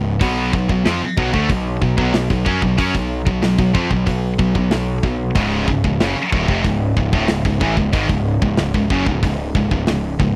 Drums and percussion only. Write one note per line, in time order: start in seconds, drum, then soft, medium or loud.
0.21 kick loud
0.21 open hi-hat medium
0.53 kick medium
0.69 kick medium
0.85 snare loud
0.85 open hi-hat soft
1.18 kick loud
1.34 kick loud
1.49 kick medium
1.49 open hi-hat soft
1.82 kick medium
1.98 kick loud
2.14 snare loud
2.14 open hi-hat medium
2.30 kick medium
2.46 kick loud
2.62 kick medium
2.78 kick loud
2.78 open hi-hat medium
2.95 kick medium
3.27 kick medium
3.42 snare medium
3.42 open hi-hat medium
3.59 kick medium
3.75 kick loud
3.91 kick medium
4.07 kick medium
4.07 open hi-hat medium
4.39 kick medium
4.55 kick medium
4.71 snare loud
4.71 open hi-hat medium
5.03 kick medium
5.36 kick loud
5.36 open hi-hat medium
5.68 kick medium
5.84 kick medium
6.00 snare loud
6.00 open hi-hat medium
6.32 kick loud
6.48 kick medium
6.64 kick medium
6.64 open hi-hat soft
6.97 kick medium
7.13 kick loud
7.28 snare loud
7.28 open hi-hat medium
7.45 kick medium
7.61 kick loud
7.77 kick medium
7.93 kick loud
7.93 open hi-hat medium
8.09 kick medium
8.42 kick medium
8.57 snare medium
8.57 open hi-hat soft
8.74 kick medium
8.90 kick loud
9.06 kick medium
9.23 kick medium
9.23 open hi-hat medium
9.55 kick medium
9.71 kick medium
9.87 snare loud
9.87 open hi-hat medium
10.20 kick medium